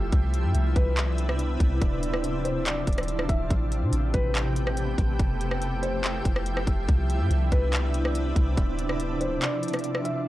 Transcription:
Already playing: F1 F3 E4
0.12 C2 C3 B3 D4, kick, closed hi-hat
0.34 closed hi-hat
0.44 G2
0.55 C2, closed hi-hat
0.76 C2 B4, kick, closed hi-hat
0.97 clap, closed hi-hat
1.18 closed hi-hat
1.29 cross-stick
1.39 closed hi-hat
1.60 C2, kick, closed hi-hat
1.81 D1 F3 D4, kick, closed hi-hat
2.03 closed hi-hat
2.14 cross-stick
2.24 closed hi-hat
2.45 C5, closed hi-hat
2.66 D5, clap, closed hi-hat
2.87 D1, kick, closed hi-hat
2.93 closed hi-hat
2.98 cross-stick, closed hi-hat
3.03 closed hi-hat
3.08 closed hi-hat
3.19 cross-stick
3.29 D1 E5, kick, closed hi-hat
3.50 A1 A3 B3 G4, kick, closed hi-hat
3.72 closed hi-hat
3.82 C3
3.93 A1, closed hi-hat
4.14 A1 B4, kick, closed hi-hat
4.35 clap, closed hi-hat
4.56 closed hi-hat
4.67 cross-stick
4.77 closed hi-hat
4.98 A1, kick, closed hi-hat
5.19 F1 F3 E4 G4, kick, closed hi-hat
5.41 closed hi-hat
5.51 cross-stick
5.62 closed hi-hat
5.83 C5, closed hi-hat
6.04 clap, closed hi-hat
6.25 F1, kick, closed hi-hat
6.36 cross-stick
6.46 closed hi-hat
6.57 cross-stick
6.67 F1, kick, closed hi-hat
6.89 C2 C3 B3 D4, kick, closed hi-hat
7.10 closed hi-hat
7.20 G2
7.31 C2, closed hi-hat
7.52 C2 B4, kick, closed hi-hat
7.73 clap, closed hi-hat
7.94 closed hi-hat
8.05 cross-stick
8.15 closed hi-hat
8.36 C2, kick, closed hi-hat
8.57 D1 F3, kick, closed hi-hat
8.79 closed hi-hat
8.89 cross-stick
9.00 closed hi-hat
9.21 C5, closed hi-hat
9.42 D5, clap, closed hi-hat
9.63 closed hi-hat
9.68 closed hi-hat
9.73 cross-stick, closed hi-hat
9.79 closed hi-hat
9.84 closed hi-hat
9.95 cross-stick
10.05 E5, closed hi-hat

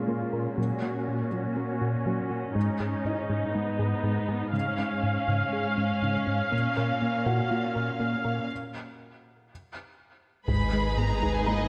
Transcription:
Already playing: A#2 G#3 C#4 F4 G#4
0.08 A#2 A#3
0.33 A#2 A#4
0.57 A#2 F#3 C#4 F#4
0.82 A#2 F#4
1.08 A#2
1.31 A#2 F#3
1.56 A#3 C#4
1.81 A#2 F#4
2.06 A#2 F#3
2.31 A#2 F#4
2.55 G#2 G#3 D#4
2.80 G#2 G#4
3.05 G#2 D#4 D#5
3.30 G#2 G#3
3.55 G#3 B3 D#4
3.79 G#2 G#4
4.04 G#2 G#3
4.28 G#2 G#4
4.53 G#2 C#3 C#4 F5
4.78 G#2 C#4
5.03 G#2
5.28 G#2 C#3
5.52 G#3
5.77 G#2 C#4
6.02 G#2 C#3
6.27 G#2 C#4
6.51 A#2 A#3
6.77 A#2 A#4
7.02 A#2
7.26 A#2 A#3 F#4 F#5
7.50 A#3 F4
7.75 A#2 A#4
8.00 A#2 A#3
8.24 A#2 A#4
10.48 G#1 G#2 G#3 D#4 G#4 B4 B5, taiko
10.73 G#3
10.97 G#2 B3 A#5
11.22 G#3 D#4, taiko
11.35 G#5
11.46 G#2 G#3 A#3 D#5 A#5

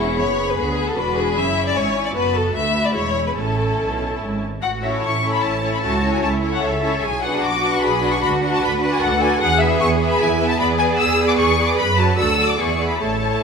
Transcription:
Already playing: E1 E2 C#4 E4 G#4 C#6
0.18 F#1 F#2 B3 C#5 B5
0.48 B4
0.57 D2 B3 G#4
0.87 A4
0.97 E1 E2 D4 F#4 B4 B5
1.16 G#4
1.36 F#1 F#2 C#4 E4 E5
1.66 D5
1.76 G#1 G#2 E4 C#5 G#5
2.06 D5
2.15 F#1 F#2 B3 F#4 B4 A5
2.36 A4
2.54 D2 A3 F#4 E5 B5
2.85 D5
2.94 E1 E2 G#3 E4 C#5
3.26 B4
3.36 A1 A2 C#4 E4 A4 A5
3.79 B1 B2
4.21 G#1 G#2
4.62 A1 F#4 F#5
4.83 C#4 E4 A4 C#5 E5
5.03 A1 E4 C#6
5.22 C#4 E4 A4 C#5
5.33 B5
5.43 A1 A5
5.63 C#4 E4 A4 C#5
5.74 B5
5.83 C#2 C#4 E4 F#4 A4 C#5 A5
6.03 C#4 E4 A4 C#5
6.14 G#5
6.23 C#2 E4 A5
6.43 C#4 E4 A4 C#5
6.53 F#5
6.63 C#2 A4 E5
6.83 C#4 E4 A4 C#5
7.03 B1 G#4 G#5
7.22 D4 F#4 B4 F#5
7.43 B1 F#4 D6
7.62 D4 F#4 B4 F#5
7.73 C#6
7.82 B1 G#4 B5
8.02 D4 F#4 B4 F#5
8.13 C#6
8.22 D2 D4 F#4 B4 F#5 B5
8.42 D4 F#4 B4 F#5
8.53 A5
8.62 D2 B4 B5
8.82 D4 F#4 B4 F#5
8.92 G#5
9.01 D2 A4 F#5
9.21 D4 F#4 B4 F#5 G#5
9.41 E2 G#4 F#5
9.60 B3 G#4 B4 E5
9.81 E2 C#6
9.99 B3 G#4 B4 E5
10.10 B5
10.19 E2 E4 G#5
10.38 B3 G#4 B4 E5
10.49 A5
10.59 E2 B3 G#4 B4 D5 B5
10.78 B3 G#4 B4 D5 G#5
10.98 E2 E6
11.18 B3 G#4 B4 D5
11.28 D6
11.37 E2 C#6
11.57 B3 G#4 B4 D5
11.67 D6
11.78 F#2 B4 B5
11.98 F#3 F#4 A4 C#5 A5
12.18 D2 F#3 F#4 A4 D5 E6
12.38 F#3 F#4 A4 D5
12.48 D6
12.58 E2 B3 E4 G#4 D5 C#6
12.79 B3 E4 G#4 D5
12.89 B5
12.99 A1 A3 E4 A4 C#5 A5
13.20 A3 E4 A4 C#5

